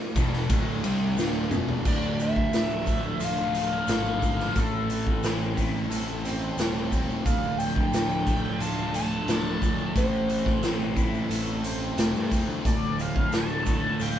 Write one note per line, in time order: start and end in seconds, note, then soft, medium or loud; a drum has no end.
0.00 1.81 A3 medium
0.00 1.80 D4 medium
0.00 1.80 D5 medium
0.00 1.80 F5 medium
0.15 0.47 E1 medium
0.15 0.48 E2 medium
0.15 0.49 B2 medium
0.15 0.49 E3 medium
0.15 kick medium
0.15 ride medium
0.15 shaker medium
0.34 snare soft
0.49 0.81 D1 medium
0.49 0.82 D2 medium
0.49 0.83 A2 loud
0.49 0.83 D3 medium
0.49 kick loud
0.49 ride medium
0.49 shaker loud
0.83 1.15 C2 medium
0.83 1.16 C3 medium
0.83 1.17 G3 medium
0.83 1.17 C4 medium
0.83 ride medium
0.83 shaker medium
1.17 1.49 D1 medium
1.17 1.50 D2 medium
1.17 1.51 A2 medium
1.17 1.51 D3 medium
1.17 snare medium
1.17 shaker medium
1.51 1.82 E1 medium
1.51 1.84 E2 medium
1.51 1.84 B2 medium
1.51 1.85 E3 medium
1.51 mid tom medium
1.51 shaker medium
1.69 floor tom medium
1.85 2.46 D1 medium
1.85 3.54 D2 medium
1.85 4.54 F3 medium
1.85 14.19 A3 medium
1.85 4.54 D4 medium
1.85 14.19 A4 medium
1.85 2.18 D5 loud
1.85 kick loud
1.85 crash medium
1.85 shaker medium
2.03 shaker soft
2.19 3.87 A2 medium
2.19 3.26 E5 loud
2.19 closed hi-hat medium
2.19 shaker medium
2.36 kick medium
2.52 3.14 D1 medium
2.52 3.53 D3 medium
2.52 snare loud
2.52 closed hi-hat medium
2.52 shaker medium
2.70 shaker soft
2.86 5.23 A3 medium
2.86 kick medium
2.86 closed hi-hat medium
2.86 shaker medium
3.20 3.81 D1 medium
3.20 4.55 F4 medium
3.20 closed hi-hat medium
3.20 shaker medium
3.24 3.56 F5 medium
3.37 shaker soft
3.54 4.20 D3 medium
3.54 closed hi-hat medium
3.54 shaker medium
3.59 4.61 F5 loud
3.72 shaker soft
3.88 4.48 G#1 medium
3.88 4.54 A2 medium
3.88 snare loud
3.88 closed hi-hat medium
3.88 shaker loud
4.05 shaker soft
4.21 4.55 D3 medium
4.21 kick medium
4.21 closed hi-hat medium
4.21 shaker medium
4.40 snare soft
4.40 shaker soft
4.54 5.16 A1 medium
4.54 6.24 A2 medium
4.54 7.22 E3 medium
4.54 7.22 C4 medium
4.54 kick loud
4.54 closed hi-hat medium
4.54 shaker medium
4.59 5.25 A4 medium
4.89 6.58 E3 medium
4.89 closed hi-hat medium
4.89 shaker medium
5.07 kick medium
5.23 5.84 A1 medium
5.23 6.23 C4 medium
5.23 snare loud
5.23 closed hi-hat medium
5.23 shaker medium
5.41 shaker soft
5.56 7.25 E4 medium
5.56 kick medium
5.56 closed hi-hat medium
5.56 shaker medium
5.89 6.51 A1 medium
5.89 8.59 A4 medium
5.89 closed hi-hat medium
5.89 shaker medium
6.08 shaker soft
6.24 6.90 C4 medium
6.24 closed hi-hat medium
6.24 shaker medium
6.41 shaker soft
6.57 7.18 D#1 loud
6.57 7.92 A3 medium
6.57 snare loud
6.57 closed hi-hat loud
6.57 shaker medium
6.75 shaker soft
6.91 7.25 C4 medium
6.91 kick medium
6.91 closed hi-hat medium
6.91 shaker medium
7.10 shaker soft
7.24 7.86 D1 medium
7.24 8.94 D2 medium
7.24 9.92 F3 medium
7.24 9.93 D4 medium
7.24 7.60 F5 medium
7.24 kick loud
7.24 closed hi-hat medium
7.24 shaker medium
7.43 shaker soft
7.57 9.26 A2 medium
7.57 8.63 G5 loud
7.57 closed hi-hat medium
7.57 shaker medium
7.76 kick medium
7.92 8.53 D1 loud
7.92 8.92 D3 medium
7.92 snare medium
7.92 closed hi-hat medium
7.92 shaker medium
8.11 shaker soft
8.26 10.61 A3 medium
8.26 kick medium
8.26 closed hi-hat medium
8.26 shaker medium
8.58 9.20 D1 medium
8.58 9.95 F4 medium
8.58 8.95 A5 loud
8.58 closed hi-hat medium
8.58 shaker loud
8.79 shaker soft
8.94 9.60 D3 medium
8.94 9.92 A5 loud
8.94 closed hi-hat medium
8.94 shaker medium
9.12 shaker soft
9.27 9.87 D1 medium
9.27 9.93 A2 medium
9.27 snare loud
9.27 closed hi-hat medium
9.27 shaker medium
9.46 shaker soft
9.61 9.95 D3 medium
9.61 kick medium
9.61 closed hi-hat medium
9.61 shaker medium
9.80 shaker soft
9.94 10.56 A1 medium
9.94 11.63 A2 medium
9.94 12.63 E3 medium
9.94 12.62 C4 medium
9.94 10.60 C5 medium
9.94 kick loud
9.94 closed hi-hat medium
9.94 shaker medium
10.13 shaker soft
10.28 11.97 E3 medium
10.28 closed hi-hat medium
10.28 shaker medium
10.46 kick medium
10.46 snare soft
10.46 shaker soft
10.62 11.23 A1 loud
10.62 11.62 C4 medium
10.62 snare loud
10.62 closed hi-hat medium
10.62 shaker medium
10.81 shaker soft
10.96 12.65 E4 medium
10.96 kick medium
10.96 closed hi-hat medium
10.96 shaker medium
11.14 shaker soft
11.29 11.91 A1 medium
11.29 13.99 A4 medium
11.29 closed hi-hat medium
11.29 shaker medium
11.48 shaker soft
11.63 12.29 C4 medium
11.63 closed hi-hat medium
11.63 shaker medium
11.82 shaker soft
11.96 12.12 E1 medium
11.96 13.31 A3 medium
11.96 snare loud
11.96 closed hi-hat medium
11.96 shaker medium
12.13 12.29 G2 medium
12.13 shaker soft
12.30 12.47 E2 medium
12.30 12.65 C4 medium
12.30 kick medium
12.30 closed hi-hat medium
12.30 shaker medium
12.48 12.63 D2 medium
12.48 shaker soft
12.64 13.26 D1 medium
12.64 14.19 D2 medium
12.64 14.19 F3 medium
12.64 14.19 D4 medium
12.64 13.02 D5 medium
12.64 kick loud
12.64 closed hi-hat medium
12.64 shaker medium
12.83 shaker soft
12.98 14.19 A2 medium
12.98 13.35 F5 loud
12.98 closed hi-hat medium
12.98 shaker medium
13.16 kick medium
13.32 13.93 D1 medium
13.32 14.19 D3 medium
13.32 13.67 A5 loud
13.32 snare loud
13.32 closed hi-hat medium
13.32 shaker medium
13.49 shaker soft
13.65 14.19 A3 medium
13.65 13.99 A5 loud
13.65 kick medium
13.65 closed hi-hat medium
13.65 shaker medium
13.99 14.19 D1 medium
13.99 14.19 F4 medium
13.99 14.17 G5 medium
13.99 closed hi-hat medium
13.99 shaker medium